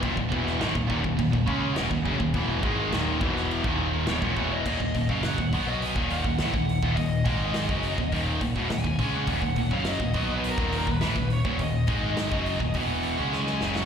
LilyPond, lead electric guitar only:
\new Staff \with { instrumentName = "Lead electric guitar" } { \time 4/4 \key ees \minor \tempo 4 = 104 r1 | r2. des''8. ees''16~ | ees''8. f''16 ges''8. ees''16 aes''8 ges''4. | ees''2 r4 aes''8. ges''16~ |
ges''8. f''16 ees''8 ees''16 ces''16 bes'8 bes'16 ces''8. des''8 | ees''2 ges''4 aes''8. ges''16 | }